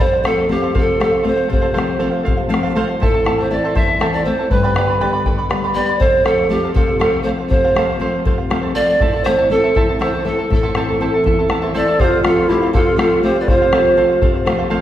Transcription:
0.00 F2 A4 C5 F5, bombo low
0.13 C5 F5, bombo rim
0.24 F3 A3 C4 A4 C5 F5, bombo rim
0.38 C5 F5, bombo rim
0.49 F3 A3 C4 G4 A4 C5 F5
0.62 A4 C5 F5
0.74 C3 A4 C5 F5, bombo low
0.86 C5 F5, bombo rim
1.00 F3 A3 C4 A4 C5 F5, bombo rim
1.12 C5 F5
1.23 F3 A3 C4 A4 C5 F5
1.36 C5 F5
1.48 C3 A4 C5 F5
1.53 bombo rim, bombo low
1.61 A4 C5 F5, bombo rim
1.74 F3 A3 C4 A4 C5 F5
1.78 bombo rim
1.86 C5 F5, bombo rim
1.99 F3 A3 C4 A4 C5 F5
2.11 C5 F5
2.23 C3 A4 C5 F5
2.27 bombo low
2.37 C5 F5, bombo rim
2.49 F3 A3 C4 A4 C5 F5
2.54 bombo rim
2.63 A4 C5 F5
2.75 F3 A3 C4 A4 C5 F5
2.89 C5 F5
3.00 A2 E4 A4 C5 E5 A5, bombo rim, bombo low
3.14 E4 A4 A5, bombo rim
3.25 E3 A3 C4 E4 A4 E5 A5, bombo rim
3.38 E4 A4 C5 A5, bombo rim
3.50 E3 A3 C4 E4 A4 D5 E5 A5
3.64 E4 A4 C5 E5 A5
3.75 E2 E4 A4 C5 E5 A5, bombo low
3.88 E4 A4 A5, bombo rim
4.00 E3 A3 C4 E4 A4 C5 E5 A5, bombo rim
4.12 E4 A4 D5 A5
4.24 E3 A3 C4 E4 A4 C5 E5 A5
4.39 E4 A4 A5
4.51 G2 B4 D5 G5 B5, bombo low
4.63 G4 B4 D5 G5 B5
4.74 D3 G3 B3 G4 B4 D5 G5 B5, bombo rim
4.88 B4 D5 B5
5.01 D3 G3 B3 G4 B4 D5 G5 B5
5.13 B4 D5 B5, bombo rim
5.26 D3 B4 D5 G5 B5, bombo low
5.38 B4 D5 B5, bombo rim
5.49 D3 G3 B3 B4 D5 G5 B5, bombo rim
5.64 G4 B4 D5 G5 B5
5.74 D3 G3 B3 G4 B4 D5 G5 B5
5.89 B4 D5 B5
5.99 F2 A4 C5 F5, bombo rim, bombo low
6.13 C5 F5
6.24 F3 A3 C4 A4 C5 F5, bombo rim
6.39 C5 F5, bombo rim
6.49 F3 A3 C4 G4 A4 C5
6.53 F5
6.64 A4 C5 F5
6.74 C3 A4 C5 F5, bombo low
6.88 C5 F5, bombo rim
6.99 F3 A3 C4 A4 C5 F5, bombo rim
7.13 C5 F5
7.23 F3 A3 C4 A4 C5
7.27 C5 F5
7.38 C5 F5
7.49 C3 A4 C5, bombo rim, bombo low
7.53 F5
7.64 A4 C5 F5, bombo rim
7.75 F3 A3 C4 A4 C5 F5, bombo rim
7.89 C5 F5, bombo rim
8.00 F3 A3 C4 A4 C5 F5
8.14 C5 F5
8.25 C3 A4 C5 F5, bombo low
8.38 C5 F5, bombo rim
8.50 F3 A3 C4 A4 C5 F5, bombo rim
8.62 A4 C5 F5
8.75 F3 A3 C4 A4 C5 D5 F5
8.87 C5 F5
9.01 A2 E4 A4 C5 E5 A5, bombo rim, bombo low
9.13 E4 A4 A5, bombo rim
9.24 E3 A3 C4 E4 A4 C5 E5 A5, bombo rim
9.38 E4 A4 A5, bombo rim
9.50 E3 A3 C4 E4 A4 E5 A5
9.64 E4 A4 C5 E5 A5
9.75 E2 E4 A4 C5 E5 A5, bombo low
9.89 E4 A4 A5, bombo rim
9.99 E3 A3 C4 E4 A4 C5 E5 A5, bombo rim
10.14 E4 A4 A5
10.25 E3 A3 C4 E4 A4 E5 A5
10.39 E4 A4 A5
10.50 A2 E4 A4 E5 A5, bombo low
10.63 E4 A4 C5 E5 A5
10.75 E3 A3 C4 E4 A4 C5 E5 A5, bombo rim
10.89 E4 A4 A5
11.00 E3 A3 C4 E4 A4 C5 E5 A5
11.14 E4 A4 A5
11.24 E2 E4 A4 E5 A5, bombo low
11.39 E4 A4 A5
11.49 E3 A3 C4 E4 A4 E5 A5, bombo rim
11.62 E4 A4 C5 E5 A5
11.74 E3 A3 C4 E4 A4 C5 D5 E5 A5
11.88 E4 A4 A5, bombo rim
11.99 F2 G4 A4 C5 F5, bombo rim, bombo low
12.05 F4
12.11 C5 F5, bombo rim
12.23 F3 A3 C4 F4 A4 C5 F5, bombo rim
12.35 C5 F5, bombo rim
12.48 F3 A3 C4 E4 G4 A4 C5 F5
12.62 A4 C5 F5
12.73 C3 G4 A4 C5 F5, bombo low
12.79 F4
12.86 C5 F5, bombo rim
12.97 F3 A3 C4 A4 C5 F5, bombo rim
13.01 F4
13.12 C5 F5
13.23 F3 A3 C4 G4 A4 C5 F5
13.36 C5 F5
13.40 B4 D5
13.48 C3 F4 A4 C5 F5, bombo rim, bombo low
13.61 A4 C5 F5, bombo rim
13.72 F3 A3 C4 A4 C5 F5, bombo rim
13.85 C5 F5, bombo rim
13.97 F3 A3 C4 A4 C5 F5
14.09 C5 F5
14.21 C3 A4 C5 F5, bombo low
14.34 C5 F5, bombo rim
14.45 F3 A3 C4 A4 C5 F5, bombo rim
14.58 A4 C5 F5
14.70 F3 A3 C4 A4 C5 F5

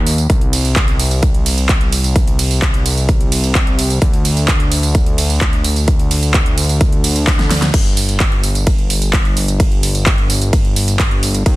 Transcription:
Already playing: D#2
0.07 open hi-hat, tambourine
0.18 closed hi-hat, tambourine
0.30 C2, kick, closed hi-hat, tambourine
0.41 closed hi-hat
0.53 open hi-hat, ride, tambourine
0.65 closed hi-hat, tambourine
0.76 kick, clap, closed hi-hat
0.88 closed hi-hat
1.00 open hi-hat, ride, tambourine
1.11 closed hi-hat, tambourine
1.23 kick, closed hi-hat, tambourine
1.34 closed hi-hat
1.46 open hi-hat, ride, tambourine
1.58 closed hi-hat, tambourine
1.69 kick, clap, closed hi-hat, tambourine
1.81 closed hi-hat
1.92 open hi-hat, ride, tambourine
2.04 closed hi-hat, tambourine
2.16 kick, closed hi-hat, tambourine
2.27 closed hi-hat
2.39 open hi-hat, ride, tambourine
2.51 closed hi-hat, tambourine
2.62 kick, clap, closed hi-hat
2.74 closed hi-hat
2.86 open hi-hat, ride, tambourine
2.97 closed hi-hat, tambourine
3.09 kick, closed hi-hat, tambourine
3.21 closed hi-hat
3.32 open hi-hat, ride, tambourine
3.44 closed hi-hat, tambourine
3.55 kick, clap, closed hi-hat, tambourine
3.67 closed hi-hat
3.79 open hi-hat, ride, tambourine
3.90 closed hi-hat, tambourine
4.02 D2, kick, closed hi-hat, tambourine
4.13 closed hi-hat
4.25 open hi-hat, ride, tambourine
4.37 closed hi-hat, tambourine
4.48 kick, clap, closed hi-hat, tambourine
4.60 closed hi-hat
4.72 open hi-hat, ride, tambourine
4.83 closed hi-hat, tambourine
4.95 kick, closed hi-hat, tambourine
5.06 closed hi-hat
5.18 open hi-hat, ride, tambourine
5.30 closed hi-hat, tambourine
5.41 kick, clap, closed hi-hat, tambourine
5.53 closed hi-hat
5.64 open hi-hat, ride, tambourine
5.76 closed hi-hat, tambourine
5.88 kick, closed hi-hat, tambourine
5.99 closed hi-hat
6.11 open hi-hat, ride, tambourine
6.23 closed hi-hat, tambourine
6.34 kick, clap, closed hi-hat, tambourine
6.46 closed hi-hat
6.58 open hi-hat, ride, tambourine
6.69 closed hi-hat, tambourine
6.81 kick, closed hi-hat, tambourine
6.92 closed hi-hat
7.04 open hi-hat, ride, tambourine
7.16 closed hi-hat, tambourine
7.27 kick, snare, clap, open hi-hat, tambourine
7.39 snare, closed hi-hat
7.51 snare, open hi-hat, ride, tambourine
7.62 snare, closed hi-hat, tambourine
7.74 G1, kick, closed hi-hat, crash, ride, tambourine
7.85 closed hi-hat
7.97 open hi-hat, tambourine
8.09 closed hi-hat, tambourine
8.20 kick, clap, closed hi-hat, ride, tambourine
8.32 closed hi-hat
8.44 open hi-hat, tambourine
8.55 closed hi-hat, tambourine
8.67 kick, closed hi-hat, ride, tambourine
8.78 closed hi-hat
8.90 open hi-hat, tambourine
9.02 closed hi-hat, tambourine
9.13 kick, clap, closed hi-hat, ride, tambourine
9.25 closed hi-hat
9.37 open hi-hat, tambourine
9.48 closed hi-hat, tambourine
9.60 kick, closed hi-hat, ride, tambourine
9.72 closed hi-hat
9.83 open hi-hat, tambourine
9.95 closed hi-hat, tambourine
10.06 kick, clap, closed hi-hat, ride, tambourine
10.18 closed hi-hat
10.30 open hi-hat, tambourine
10.41 closed hi-hat, tambourine
10.53 kick, closed hi-hat, ride, tambourine
10.65 closed hi-hat
10.76 open hi-hat, tambourine
10.88 closed hi-hat, tambourine
10.99 kick, clap, closed hi-hat, ride, tambourine
11.11 closed hi-hat
11.23 open hi-hat, tambourine
11.34 closed hi-hat, tambourine
11.46 D#2, kick, closed hi-hat, ride, tambourine

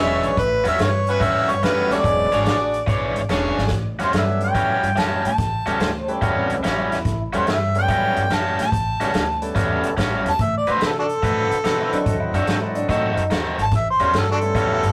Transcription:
Already playing: E1 E3 F#3 G#3 C#4 D4 E4 F#4 G#4 C#5
0.00 E5
0.23 B1 C#5, closed hi-hat
0.37 A1 B4, kick, closed hi-hat
0.64 E2 A2 G3 C#4 F#4, snare, closed hi-hat
0.68 E5
0.79 G2 C#5, snare, closed hi-hat
1.07 B3 C#4 F#4 G4 B4, closed hi-hat
1.20 E2 A2 G3 C#4 F#4 E5, kick, closed hi-hat
1.48 G2 C#5, closed hi-hat
1.62 F#2 A2 G3 A3 B3 C#4 F#4 B4, snare, closed hi-hat
1.90 D#2 A3 C#4 F#4 G4 A4 D5, snare, closed hi-hat
2.04 E1 F#3 G#3 C#4 D4 E4, kick, closed hi-hat
2.32 G#1 E3 D4 F#4 G#4 C#5 D5, closed hi-hat
2.45 A1, snare, closed hi-hat
2.74 closed hi-hat
2.87 B1 E3 D4 G#4 C#5, kick, closed hi-hat
3.15 G#1, closed hi-hat
3.29 E1 E3 C#4 D4 F#4 G#4 C#5, snare, closed hi-hat
3.57 G#1, snare
3.67 A1, kick, snare, closed hi-hat
3.99 E2 A2 G3 C#4 F#4, snare, closed hi-hat
4.03 C5
4.13 G2 F#3 G3 A3 B3 C#4, snare, closed hi-hat
4.17 E5
4.40 G5, closed hi-hat
4.55 E2 A2 G3 C#4 F#4, kick, closed hi-hat
4.83 G2, closed hi-hat
4.96 F#2 A2 G3 C#4 F#4 A5, snare, closed hi-hat
5.25 A2 A5, closed hi-hat
5.38 A1, kick, snare, closed hi-hat
5.66 C#2 A2 G3 A3 B3 C#4 F#4, closed hi-hat
5.80 D2 C5, snare, closed hi-hat
6.08 G3 A3 B3 C#4 E4 G4, closed hi-hat
6.21 E2 A2 G3 C#4 F#4, kick, closed hi-hat
6.37 C4
6.50 C#2, closed hi-hat
6.63 A1 A2 G3 C#4 E4 F#4, snare, closed hi-hat
6.79 E4
6.91 E2 E4, snare, closed hi-hat
7.05 A1, kick, snare, closed hi-hat
7.33 E2 A2 G3 A3 B3 C#4 F#4, closed hi-hat
7.37 C5
7.47 G2, snare, closed hi-hat
7.51 E5
7.75 F#3 G3 A3 B3 C#4 G5, closed hi-hat
7.88 E2 A2 G3 C#4 F#4, kick, closed hi-hat
8.16 G2, closed hi-hat
8.30 F#2 A2 G3 C#4 F#4, snare, closed hi-hat
8.35 A5
8.58 A2 A5, snare, closed hi-hat
8.72 A1, kick, closed hi-hat
9.00 C#2 A2 G3 A3 B3 C#4 F#4, snare, closed hi-hat
9.14 D2, snare, closed hi-hat
9.42 G3 A3 B3 C#4 A4, closed hi-hat
9.55 E2 A2 G3 C#4 F#4, kick, snare, closed hi-hat
9.83 C#2, closed hi-hat
9.97 A1 A2 G3 C#4 F#4, kick, snare, closed hi-hat
10.25 E2, snare, closed hi-hat
10.30 A5
10.39 D2 E5, kick, closed hi-hat
10.58 D5
10.66 A2 D3 C4 F#4 B4, closed hi-hat
10.73 C5
10.80 C3, snare, closed hi-hat
10.86 A4
10.99 D4 F#4 A4
11.09 closed hi-hat
11.23 A2 D3 C4 F#4 B4, kick, closed hi-hat
11.51 C3, closed hi-hat
11.64 B2 D3 C4 F#4 A4 B4, snare, closed hi-hat
11.80 E4
11.92 D3 F#3 A3 C4 D4 D#4 F#4, closed hi-hat
12.06 D#2 A4, kick, closed hi-hat
12.20 E4
12.33 F#2 D#3 C4 D4 F#4 A4, closed hi-hat
12.47 G#2 F#3 C4 D#4 F#4 A4, snare, closed hi-hat
12.62 E4
12.75 D4, closed hi-hat
12.88 A2 D#3 C4 D#4 F#4 A4, kick, snare, closed hi-hat
13.17 F#2, closed hi-hat
13.30 D#2 D#3 C4 F#4 A4, snare, closed hi-hat
13.58 G#1, closed hi-hat
13.62 A5
13.71 A1, kick, snare, closed hi-hat
13.76 E5
13.90 C5
13.99 E2 A2 G3 A3 B3 C#4 F#4, closed hi-hat
14.04 C5
14.13 G2, snare, closed hi-hat
14.18 A4
14.32 D4 F#4 A4
14.41 G3 A3 B3 C#4 E4, closed hi-hat
14.55 E2 A2 G3 C#4 F#4, kick, closed hi-hat
14.83 G2, closed hi-hat

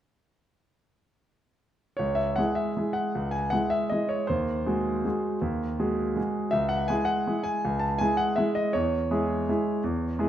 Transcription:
1.97 C#2 C#5
2.15 E5
2.36 G#3 E4 G#4 F#5
2.55 E5
2.77 G#3 E4 G#4
2.93 F#5
3.15 C#2
3.31 G#5
3.50 G#3 E4 G#4 F#5
3.70 E5
3.90 G#3 E4 G#4 D#5
4.09 C#5
4.27 D#2 C5
4.66 G#3 F#4 G#4
5.05 G#3 F#4 G#4
5.41 D#2
5.79 G#3 F#4 G#4
6.16 G#3 F#4 G#4
6.51 C#2 E5
6.69 F#5
6.88 G#3 E4 G#4 G#5
7.05 F#5
7.27 G#3 E4 G#4
7.44 G#5
7.65 C#2
7.79 A5
7.99 G#3 E4 G#4 G#5
8.17 F#5
8.36 G#3 E4 G#4 E5
8.55 D#5
8.73 E2 C#5
9.11 G#3 E4 G#4
9.49 G#3 E4 G#4
9.84 E2
10.19 G#3 E4 G#4

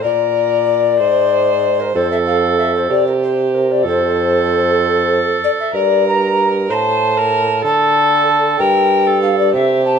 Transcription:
0.03 A#2 A#4 D5
1.00 G#2 C5
1.80 A#4
1.94 F2 A4 C5
2.12 E5
2.26 F5
2.58 E5
2.75 C5
2.90 C3 G4 D5
3.07 A#4
3.23 C5
3.54 A#4
3.71 D5
3.85 F2 A4 C5
5.44 D5
5.60 E5
5.74 G2 A#4 D5
6.07 A#5
6.70 A2 C5 A5 A#5
7.17 A#4
7.64 D3 A4 A5
8.58 G2 A#4 G5
9.07 A4
9.22 F5
9.38 D5
9.54 C3 G4 E5
9.85 A5

